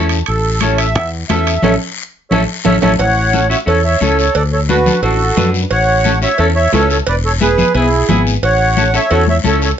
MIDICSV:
0, 0, Header, 1, 5, 480
1, 0, Start_track
1, 0, Key_signature, 3, "major"
1, 0, Tempo, 339559
1, 389, Time_signature, 4, 2, 24, 8
1, 13842, End_track
2, 0, Start_track
2, 0, Title_t, "Accordion"
2, 0, Program_c, 0, 21
2, 386, Note_on_c, 0, 69, 78
2, 834, Note_off_c, 0, 69, 0
2, 864, Note_on_c, 0, 73, 84
2, 1090, Note_off_c, 0, 73, 0
2, 1097, Note_on_c, 0, 76, 89
2, 1550, Note_off_c, 0, 76, 0
2, 1818, Note_on_c, 0, 76, 86
2, 2292, Note_off_c, 0, 76, 0
2, 2312, Note_on_c, 0, 73, 84
2, 2313, Note_on_c, 0, 76, 92
2, 2318, Note_on_c, 0, 69, 86
2, 2465, Note_off_c, 0, 73, 0
2, 2466, Note_off_c, 0, 76, 0
2, 2468, Note_off_c, 0, 69, 0
2, 3260, Note_on_c, 0, 73, 90
2, 3262, Note_on_c, 0, 76, 88
2, 3264, Note_on_c, 0, 69, 83
2, 3418, Note_off_c, 0, 73, 0
2, 3419, Note_off_c, 0, 76, 0
2, 3420, Note_off_c, 0, 69, 0
2, 3755, Note_on_c, 0, 76, 91
2, 3756, Note_on_c, 0, 69, 86
2, 3759, Note_on_c, 0, 73, 79
2, 3907, Note_off_c, 0, 69, 0
2, 3907, Note_off_c, 0, 76, 0
2, 3909, Note_off_c, 0, 73, 0
2, 3976, Note_on_c, 0, 73, 88
2, 3976, Note_on_c, 0, 76, 92
2, 3978, Note_on_c, 0, 69, 84
2, 4135, Note_off_c, 0, 73, 0
2, 4136, Note_off_c, 0, 76, 0
2, 4137, Note_off_c, 0, 69, 0
2, 4229, Note_on_c, 0, 78, 100
2, 4235, Note_on_c, 0, 73, 83
2, 4900, Note_off_c, 0, 78, 0
2, 4903, Note_off_c, 0, 73, 0
2, 4949, Note_on_c, 0, 76, 106
2, 4955, Note_on_c, 0, 73, 74
2, 5058, Note_off_c, 0, 76, 0
2, 5062, Note_off_c, 0, 73, 0
2, 5191, Note_on_c, 0, 69, 76
2, 5192, Note_on_c, 0, 73, 94
2, 5408, Note_off_c, 0, 73, 0
2, 5415, Note_off_c, 0, 69, 0
2, 5430, Note_on_c, 0, 73, 75
2, 5437, Note_on_c, 0, 76, 89
2, 5654, Note_off_c, 0, 73, 0
2, 5658, Note_off_c, 0, 76, 0
2, 5682, Note_on_c, 0, 73, 91
2, 5684, Note_on_c, 0, 69, 70
2, 5898, Note_off_c, 0, 73, 0
2, 5901, Note_off_c, 0, 69, 0
2, 5920, Note_on_c, 0, 73, 83
2, 5922, Note_on_c, 0, 69, 70
2, 6132, Note_off_c, 0, 69, 0
2, 6153, Note_on_c, 0, 74, 85
2, 6154, Note_on_c, 0, 69, 73
2, 6163, Note_off_c, 0, 73, 0
2, 6261, Note_off_c, 0, 69, 0
2, 6261, Note_off_c, 0, 74, 0
2, 6398, Note_on_c, 0, 69, 65
2, 6401, Note_on_c, 0, 73, 80
2, 6505, Note_off_c, 0, 69, 0
2, 6507, Note_off_c, 0, 73, 0
2, 6635, Note_on_c, 0, 71, 96
2, 6640, Note_on_c, 0, 66, 76
2, 7080, Note_off_c, 0, 71, 0
2, 7081, Note_off_c, 0, 66, 0
2, 7102, Note_on_c, 0, 66, 71
2, 7104, Note_on_c, 0, 69, 86
2, 7776, Note_off_c, 0, 66, 0
2, 7777, Note_off_c, 0, 69, 0
2, 8074, Note_on_c, 0, 73, 73
2, 8078, Note_on_c, 0, 78, 101
2, 8743, Note_off_c, 0, 73, 0
2, 8745, Note_off_c, 0, 78, 0
2, 8800, Note_on_c, 0, 76, 96
2, 8803, Note_on_c, 0, 73, 77
2, 9016, Note_off_c, 0, 73, 0
2, 9032, Note_on_c, 0, 69, 69
2, 9037, Note_on_c, 0, 73, 91
2, 9043, Note_off_c, 0, 76, 0
2, 9140, Note_off_c, 0, 69, 0
2, 9144, Note_off_c, 0, 73, 0
2, 9266, Note_on_c, 0, 73, 78
2, 9271, Note_on_c, 0, 76, 97
2, 9492, Note_off_c, 0, 73, 0
2, 9495, Note_off_c, 0, 76, 0
2, 9521, Note_on_c, 0, 69, 69
2, 9527, Note_on_c, 0, 73, 97
2, 9735, Note_off_c, 0, 73, 0
2, 9736, Note_off_c, 0, 69, 0
2, 9756, Note_on_c, 0, 73, 86
2, 9757, Note_on_c, 0, 69, 73
2, 9863, Note_off_c, 0, 73, 0
2, 9864, Note_off_c, 0, 69, 0
2, 10010, Note_on_c, 0, 71, 71
2, 10015, Note_on_c, 0, 74, 89
2, 10114, Note_off_c, 0, 71, 0
2, 10118, Note_off_c, 0, 74, 0
2, 10247, Note_on_c, 0, 69, 62
2, 10255, Note_on_c, 0, 73, 89
2, 10352, Note_off_c, 0, 69, 0
2, 10358, Note_off_c, 0, 73, 0
2, 10486, Note_on_c, 0, 68, 73
2, 10490, Note_on_c, 0, 71, 99
2, 10925, Note_off_c, 0, 68, 0
2, 10928, Note_off_c, 0, 71, 0
2, 10968, Note_on_c, 0, 64, 69
2, 10973, Note_on_c, 0, 68, 87
2, 11630, Note_off_c, 0, 64, 0
2, 11633, Note_off_c, 0, 68, 0
2, 11932, Note_on_c, 0, 73, 77
2, 11933, Note_on_c, 0, 78, 102
2, 12592, Note_off_c, 0, 73, 0
2, 12654, Note_on_c, 0, 73, 70
2, 12664, Note_off_c, 0, 78, 0
2, 12664, Note_on_c, 0, 76, 96
2, 12864, Note_off_c, 0, 73, 0
2, 12872, Note_off_c, 0, 76, 0
2, 12879, Note_on_c, 0, 69, 70
2, 12885, Note_on_c, 0, 73, 92
2, 13099, Note_off_c, 0, 69, 0
2, 13102, Note_off_c, 0, 73, 0
2, 13135, Note_on_c, 0, 73, 75
2, 13142, Note_on_c, 0, 76, 91
2, 13237, Note_off_c, 0, 73, 0
2, 13243, Note_off_c, 0, 76, 0
2, 13383, Note_on_c, 0, 69, 66
2, 13391, Note_on_c, 0, 73, 85
2, 13591, Note_off_c, 0, 69, 0
2, 13603, Note_off_c, 0, 73, 0
2, 13622, Note_on_c, 0, 69, 59
2, 13624, Note_on_c, 0, 73, 82
2, 13723, Note_off_c, 0, 69, 0
2, 13724, Note_off_c, 0, 73, 0
2, 13842, End_track
3, 0, Start_track
3, 0, Title_t, "Clean electric guitar"
3, 0, Program_c, 1, 27
3, 0, Note_on_c, 1, 61, 82
3, 0, Note_on_c, 1, 64, 69
3, 0, Note_on_c, 1, 69, 84
3, 246, Note_off_c, 1, 61, 0
3, 247, Note_off_c, 1, 64, 0
3, 251, Note_off_c, 1, 69, 0
3, 871, Note_on_c, 1, 61, 64
3, 884, Note_on_c, 1, 69, 75
3, 887, Note_on_c, 1, 64, 57
3, 1208, Note_off_c, 1, 61, 0
3, 1210, Note_off_c, 1, 64, 0
3, 1213, Note_off_c, 1, 69, 0
3, 1830, Note_on_c, 1, 61, 60
3, 1843, Note_on_c, 1, 64, 51
3, 1844, Note_on_c, 1, 69, 75
3, 2167, Note_off_c, 1, 61, 0
3, 2170, Note_off_c, 1, 64, 0
3, 2173, Note_off_c, 1, 69, 0
3, 2302, Note_on_c, 1, 61, 95
3, 2312, Note_on_c, 1, 64, 83
3, 2315, Note_on_c, 1, 69, 73
3, 2461, Note_off_c, 1, 61, 0
3, 2461, Note_off_c, 1, 69, 0
3, 2463, Note_off_c, 1, 64, 0
3, 3276, Note_on_c, 1, 61, 87
3, 3277, Note_on_c, 1, 64, 87
3, 3286, Note_on_c, 1, 69, 84
3, 3427, Note_off_c, 1, 64, 0
3, 3429, Note_off_c, 1, 69, 0
3, 3430, Note_off_c, 1, 61, 0
3, 3744, Note_on_c, 1, 69, 86
3, 3752, Note_on_c, 1, 61, 92
3, 3757, Note_on_c, 1, 64, 80
3, 3900, Note_off_c, 1, 69, 0
3, 3905, Note_off_c, 1, 64, 0
3, 3906, Note_off_c, 1, 61, 0
3, 3992, Note_on_c, 1, 61, 90
3, 4000, Note_on_c, 1, 64, 82
3, 4002, Note_on_c, 1, 69, 76
3, 4146, Note_off_c, 1, 61, 0
3, 4147, Note_off_c, 1, 69, 0
3, 4150, Note_off_c, 1, 64, 0
3, 4708, Note_on_c, 1, 61, 70
3, 4719, Note_on_c, 1, 64, 66
3, 4724, Note_on_c, 1, 69, 55
3, 4794, Note_off_c, 1, 61, 0
3, 4799, Note_off_c, 1, 69, 0
3, 4800, Note_off_c, 1, 64, 0
3, 4939, Note_on_c, 1, 61, 65
3, 4948, Note_on_c, 1, 66, 78
3, 4950, Note_on_c, 1, 64, 50
3, 5029, Note_off_c, 1, 61, 0
3, 5033, Note_off_c, 1, 64, 0
3, 5034, Note_off_c, 1, 66, 0
3, 5175, Note_on_c, 1, 61, 67
3, 5184, Note_on_c, 1, 64, 58
3, 5197, Note_on_c, 1, 69, 67
3, 5351, Note_off_c, 1, 61, 0
3, 5357, Note_off_c, 1, 64, 0
3, 5360, Note_off_c, 1, 69, 0
3, 5663, Note_on_c, 1, 61, 74
3, 5670, Note_on_c, 1, 64, 63
3, 5679, Note_on_c, 1, 69, 65
3, 6003, Note_off_c, 1, 61, 0
3, 6007, Note_off_c, 1, 64, 0
3, 6009, Note_off_c, 1, 69, 0
3, 6629, Note_on_c, 1, 62, 69
3, 6635, Note_on_c, 1, 66, 65
3, 6645, Note_on_c, 1, 69, 68
3, 6714, Note_off_c, 1, 62, 0
3, 6718, Note_off_c, 1, 66, 0
3, 6720, Note_off_c, 1, 69, 0
3, 6870, Note_on_c, 1, 62, 58
3, 6876, Note_on_c, 1, 66, 57
3, 6885, Note_on_c, 1, 69, 62
3, 6955, Note_off_c, 1, 62, 0
3, 6958, Note_off_c, 1, 66, 0
3, 6960, Note_off_c, 1, 69, 0
3, 7114, Note_on_c, 1, 62, 65
3, 7118, Note_on_c, 1, 66, 58
3, 7129, Note_on_c, 1, 69, 60
3, 7281, Note_off_c, 1, 62, 0
3, 7284, Note_off_c, 1, 66, 0
3, 7285, Note_off_c, 1, 69, 0
3, 7587, Note_on_c, 1, 62, 70
3, 7592, Note_on_c, 1, 66, 60
3, 7605, Note_on_c, 1, 71, 69
3, 7925, Note_off_c, 1, 62, 0
3, 7929, Note_off_c, 1, 66, 0
3, 7932, Note_off_c, 1, 71, 0
3, 8544, Note_on_c, 1, 61, 77
3, 8554, Note_on_c, 1, 64, 59
3, 8557, Note_on_c, 1, 69, 79
3, 8633, Note_off_c, 1, 61, 0
3, 8635, Note_off_c, 1, 64, 0
3, 8638, Note_off_c, 1, 69, 0
3, 8788, Note_on_c, 1, 61, 64
3, 8799, Note_on_c, 1, 64, 53
3, 8802, Note_on_c, 1, 66, 66
3, 8875, Note_off_c, 1, 61, 0
3, 8877, Note_off_c, 1, 64, 0
3, 8881, Note_off_c, 1, 66, 0
3, 9033, Note_on_c, 1, 61, 68
3, 9041, Note_on_c, 1, 64, 61
3, 9047, Note_on_c, 1, 69, 77
3, 9200, Note_off_c, 1, 61, 0
3, 9204, Note_off_c, 1, 64, 0
3, 9207, Note_off_c, 1, 69, 0
3, 9513, Note_on_c, 1, 61, 71
3, 9519, Note_on_c, 1, 64, 65
3, 9529, Note_on_c, 1, 69, 76
3, 9848, Note_off_c, 1, 61, 0
3, 9851, Note_off_c, 1, 64, 0
3, 9856, Note_off_c, 1, 69, 0
3, 10469, Note_on_c, 1, 59, 64
3, 10475, Note_on_c, 1, 64, 60
3, 10484, Note_on_c, 1, 68, 74
3, 10554, Note_off_c, 1, 59, 0
3, 10559, Note_off_c, 1, 64, 0
3, 10559, Note_off_c, 1, 68, 0
3, 10711, Note_on_c, 1, 59, 63
3, 10718, Note_on_c, 1, 64, 54
3, 10733, Note_on_c, 1, 68, 67
3, 10795, Note_off_c, 1, 59, 0
3, 10799, Note_off_c, 1, 64, 0
3, 10806, Note_off_c, 1, 68, 0
3, 10948, Note_on_c, 1, 59, 67
3, 10954, Note_on_c, 1, 64, 62
3, 10960, Note_on_c, 1, 68, 78
3, 11118, Note_off_c, 1, 59, 0
3, 11121, Note_off_c, 1, 64, 0
3, 11124, Note_off_c, 1, 68, 0
3, 11432, Note_on_c, 1, 59, 67
3, 11443, Note_on_c, 1, 64, 52
3, 11445, Note_on_c, 1, 68, 70
3, 11768, Note_off_c, 1, 59, 0
3, 11771, Note_off_c, 1, 64, 0
3, 11775, Note_off_c, 1, 68, 0
3, 12398, Note_on_c, 1, 61, 70
3, 12407, Note_on_c, 1, 64, 57
3, 12412, Note_on_c, 1, 69, 65
3, 12481, Note_off_c, 1, 61, 0
3, 12481, Note_off_c, 1, 69, 0
3, 12482, Note_off_c, 1, 64, 0
3, 12632, Note_on_c, 1, 61, 66
3, 12638, Note_on_c, 1, 64, 58
3, 12645, Note_on_c, 1, 69, 65
3, 12716, Note_off_c, 1, 61, 0
3, 12720, Note_off_c, 1, 64, 0
3, 12720, Note_off_c, 1, 69, 0
3, 12874, Note_on_c, 1, 61, 62
3, 12878, Note_on_c, 1, 66, 69
3, 12883, Note_on_c, 1, 64, 55
3, 13041, Note_off_c, 1, 64, 0
3, 13042, Note_off_c, 1, 61, 0
3, 13042, Note_off_c, 1, 66, 0
3, 13339, Note_on_c, 1, 61, 69
3, 13350, Note_on_c, 1, 69, 75
3, 13354, Note_on_c, 1, 64, 54
3, 13684, Note_off_c, 1, 61, 0
3, 13686, Note_off_c, 1, 64, 0
3, 13687, Note_off_c, 1, 69, 0
3, 13842, End_track
4, 0, Start_track
4, 0, Title_t, "Fingered electric bass"
4, 0, Program_c, 2, 33
4, 0, Note_on_c, 2, 40, 84
4, 292, Note_off_c, 2, 40, 0
4, 399, Note_on_c, 2, 33, 81
4, 1351, Note_off_c, 2, 33, 0
4, 1351, Note_on_c, 2, 40, 90
4, 1735, Note_off_c, 2, 40, 0
4, 1837, Note_on_c, 2, 40, 81
4, 2218, Note_off_c, 2, 40, 0
4, 2308, Note_on_c, 2, 33, 86
4, 2488, Note_off_c, 2, 33, 0
4, 3283, Note_on_c, 2, 33, 98
4, 3456, Note_off_c, 2, 33, 0
4, 3761, Note_on_c, 2, 33, 85
4, 3935, Note_off_c, 2, 33, 0
4, 3999, Note_on_c, 2, 33, 87
4, 4174, Note_off_c, 2, 33, 0
4, 4230, Note_on_c, 2, 33, 96
4, 4998, Note_off_c, 2, 33, 0
4, 5189, Note_on_c, 2, 40, 87
4, 5574, Note_off_c, 2, 40, 0
4, 5671, Note_on_c, 2, 37, 95
4, 6055, Note_off_c, 2, 37, 0
4, 6150, Note_on_c, 2, 38, 89
4, 6918, Note_off_c, 2, 38, 0
4, 7103, Note_on_c, 2, 33, 95
4, 7490, Note_off_c, 2, 33, 0
4, 7588, Note_on_c, 2, 42, 95
4, 7973, Note_off_c, 2, 42, 0
4, 8068, Note_on_c, 2, 33, 90
4, 8838, Note_off_c, 2, 33, 0
4, 9029, Note_on_c, 2, 40, 93
4, 9414, Note_off_c, 2, 40, 0
4, 9514, Note_on_c, 2, 37, 88
4, 9897, Note_off_c, 2, 37, 0
4, 9997, Note_on_c, 2, 28, 90
4, 10763, Note_off_c, 2, 28, 0
4, 10953, Note_on_c, 2, 35, 93
4, 11336, Note_off_c, 2, 35, 0
4, 11435, Note_on_c, 2, 32, 84
4, 11817, Note_off_c, 2, 32, 0
4, 11912, Note_on_c, 2, 33, 85
4, 12680, Note_off_c, 2, 33, 0
4, 12877, Note_on_c, 2, 40, 93
4, 13259, Note_off_c, 2, 40, 0
4, 13356, Note_on_c, 2, 37, 89
4, 13738, Note_off_c, 2, 37, 0
4, 13842, End_track
5, 0, Start_track
5, 0, Title_t, "Drums"
5, 132, Note_on_c, 9, 65, 71
5, 147, Note_on_c, 9, 73, 69
5, 273, Note_off_c, 9, 65, 0
5, 288, Note_off_c, 9, 73, 0
5, 370, Note_on_c, 9, 65, 67
5, 389, Note_on_c, 9, 74, 76
5, 511, Note_off_c, 9, 65, 0
5, 530, Note_off_c, 9, 74, 0
5, 856, Note_on_c, 9, 65, 68
5, 864, Note_on_c, 9, 63, 74
5, 872, Note_on_c, 9, 73, 59
5, 998, Note_off_c, 9, 65, 0
5, 1005, Note_off_c, 9, 63, 0
5, 1014, Note_off_c, 9, 73, 0
5, 1107, Note_on_c, 9, 65, 68
5, 1119, Note_on_c, 9, 73, 69
5, 1249, Note_off_c, 9, 65, 0
5, 1260, Note_off_c, 9, 73, 0
5, 1350, Note_on_c, 9, 65, 70
5, 1355, Note_on_c, 9, 74, 72
5, 1491, Note_off_c, 9, 65, 0
5, 1496, Note_off_c, 9, 74, 0
5, 1831, Note_on_c, 9, 63, 81
5, 1833, Note_on_c, 9, 73, 63
5, 1835, Note_on_c, 9, 65, 66
5, 1835, Note_on_c, 9, 66, 70
5, 1973, Note_off_c, 9, 63, 0
5, 1975, Note_off_c, 9, 73, 0
5, 1976, Note_off_c, 9, 65, 0
5, 1976, Note_off_c, 9, 66, 0
5, 2076, Note_on_c, 9, 73, 73
5, 2080, Note_on_c, 9, 65, 68
5, 2218, Note_off_c, 9, 73, 0
5, 2221, Note_off_c, 9, 65, 0
5, 2296, Note_on_c, 9, 64, 87
5, 2307, Note_on_c, 9, 74, 95
5, 2319, Note_on_c, 9, 65, 93
5, 2437, Note_off_c, 9, 64, 0
5, 2449, Note_off_c, 9, 74, 0
5, 2460, Note_off_c, 9, 65, 0
5, 3265, Note_on_c, 9, 64, 96
5, 3281, Note_on_c, 9, 74, 93
5, 3282, Note_on_c, 9, 65, 95
5, 3406, Note_off_c, 9, 64, 0
5, 3423, Note_off_c, 9, 74, 0
5, 3424, Note_off_c, 9, 65, 0
5, 3744, Note_on_c, 9, 65, 94
5, 3754, Note_on_c, 9, 64, 97
5, 3758, Note_on_c, 9, 74, 83
5, 3885, Note_off_c, 9, 65, 0
5, 3896, Note_off_c, 9, 64, 0
5, 3899, Note_off_c, 9, 74, 0
5, 3989, Note_on_c, 9, 65, 101
5, 3999, Note_on_c, 9, 64, 99
5, 4001, Note_on_c, 9, 74, 103
5, 4131, Note_off_c, 9, 65, 0
5, 4140, Note_off_c, 9, 64, 0
5, 4142, Note_off_c, 9, 74, 0
5, 4233, Note_on_c, 9, 56, 100
5, 4241, Note_on_c, 9, 74, 78
5, 4374, Note_off_c, 9, 56, 0
5, 4382, Note_off_c, 9, 74, 0
5, 4718, Note_on_c, 9, 73, 65
5, 4722, Note_on_c, 9, 63, 73
5, 4859, Note_off_c, 9, 73, 0
5, 4863, Note_off_c, 9, 63, 0
5, 4963, Note_on_c, 9, 73, 67
5, 5105, Note_off_c, 9, 73, 0
5, 5200, Note_on_c, 9, 56, 79
5, 5203, Note_on_c, 9, 74, 69
5, 5342, Note_off_c, 9, 56, 0
5, 5345, Note_off_c, 9, 74, 0
5, 5682, Note_on_c, 9, 63, 81
5, 5686, Note_on_c, 9, 73, 67
5, 5824, Note_off_c, 9, 63, 0
5, 5827, Note_off_c, 9, 73, 0
5, 5921, Note_on_c, 9, 73, 77
5, 6062, Note_off_c, 9, 73, 0
5, 6148, Note_on_c, 9, 56, 103
5, 6160, Note_on_c, 9, 74, 68
5, 6290, Note_off_c, 9, 56, 0
5, 6301, Note_off_c, 9, 74, 0
5, 6634, Note_on_c, 9, 73, 62
5, 6635, Note_on_c, 9, 63, 83
5, 6776, Note_off_c, 9, 73, 0
5, 6777, Note_off_c, 9, 63, 0
5, 6871, Note_on_c, 9, 64, 69
5, 6876, Note_on_c, 9, 73, 73
5, 7012, Note_off_c, 9, 64, 0
5, 7017, Note_off_c, 9, 73, 0
5, 7108, Note_on_c, 9, 56, 85
5, 7125, Note_on_c, 9, 74, 72
5, 7250, Note_off_c, 9, 56, 0
5, 7266, Note_off_c, 9, 74, 0
5, 7589, Note_on_c, 9, 66, 73
5, 7598, Note_on_c, 9, 73, 66
5, 7599, Note_on_c, 9, 63, 85
5, 7599, Note_on_c, 9, 64, 81
5, 7730, Note_off_c, 9, 66, 0
5, 7739, Note_off_c, 9, 73, 0
5, 7740, Note_off_c, 9, 63, 0
5, 7740, Note_off_c, 9, 64, 0
5, 7835, Note_on_c, 9, 73, 77
5, 7976, Note_off_c, 9, 73, 0
5, 8066, Note_on_c, 9, 56, 96
5, 8070, Note_on_c, 9, 74, 77
5, 8207, Note_off_c, 9, 56, 0
5, 8211, Note_off_c, 9, 74, 0
5, 8551, Note_on_c, 9, 73, 67
5, 8563, Note_on_c, 9, 63, 78
5, 8692, Note_off_c, 9, 73, 0
5, 8704, Note_off_c, 9, 63, 0
5, 8790, Note_on_c, 9, 73, 74
5, 8931, Note_off_c, 9, 73, 0
5, 9021, Note_on_c, 9, 56, 87
5, 9034, Note_on_c, 9, 74, 69
5, 9162, Note_off_c, 9, 56, 0
5, 9175, Note_off_c, 9, 74, 0
5, 9509, Note_on_c, 9, 66, 74
5, 9516, Note_on_c, 9, 73, 58
5, 9527, Note_on_c, 9, 63, 78
5, 9650, Note_off_c, 9, 66, 0
5, 9658, Note_off_c, 9, 73, 0
5, 9668, Note_off_c, 9, 63, 0
5, 9752, Note_on_c, 9, 73, 75
5, 9894, Note_off_c, 9, 73, 0
5, 9988, Note_on_c, 9, 56, 106
5, 9991, Note_on_c, 9, 74, 72
5, 10130, Note_off_c, 9, 56, 0
5, 10132, Note_off_c, 9, 74, 0
5, 10478, Note_on_c, 9, 63, 83
5, 10482, Note_on_c, 9, 73, 64
5, 10619, Note_off_c, 9, 63, 0
5, 10623, Note_off_c, 9, 73, 0
5, 10714, Note_on_c, 9, 64, 71
5, 10722, Note_on_c, 9, 73, 66
5, 10856, Note_off_c, 9, 64, 0
5, 10863, Note_off_c, 9, 73, 0
5, 10948, Note_on_c, 9, 56, 82
5, 10963, Note_on_c, 9, 74, 71
5, 11090, Note_off_c, 9, 56, 0
5, 11105, Note_off_c, 9, 74, 0
5, 11432, Note_on_c, 9, 66, 66
5, 11438, Note_on_c, 9, 63, 78
5, 11438, Note_on_c, 9, 64, 85
5, 11439, Note_on_c, 9, 73, 61
5, 11573, Note_off_c, 9, 66, 0
5, 11579, Note_off_c, 9, 63, 0
5, 11579, Note_off_c, 9, 64, 0
5, 11581, Note_off_c, 9, 73, 0
5, 11688, Note_on_c, 9, 73, 74
5, 11829, Note_off_c, 9, 73, 0
5, 11917, Note_on_c, 9, 56, 94
5, 11923, Note_on_c, 9, 74, 70
5, 12059, Note_off_c, 9, 56, 0
5, 12065, Note_off_c, 9, 74, 0
5, 12397, Note_on_c, 9, 63, 76
5, 12399, Note_on_c, 9, 73, 64
5, 12538, Note_off_c, 9, 63, 0
5, 12540, Note_off_c, 9, 73, 0
5, 12636, Note_on_c, 9, 73, 72
5, 12778, Note_off_c, 9, 73, 0
5, 12872, Note_on_c, 9, 56, 89
5, 12874, Note_on_c, 9, 74, 68
5, 13014, Note_off_c, 9, 56, 0
5, 13015, Note_off_c, 9, 74, 0
5, 13107, Note_on_c, 9, 63, 72
5, 13249, Note_off_c, 9, 63, 0
5, 13349, Note_on_c, 9, 63, 89
5, 13354, Note_on_c, 9, 73, 66
5, 13490, Note_off_c, 9, 63, 0
5, 13495, Note_off_c, 9, 73, 0
5, 13593, Note_on_c, 9, 73, 76
5, 13735, Note_off_c, 9, 73, 0
5, 13842, End_track
0, 0, End_of_file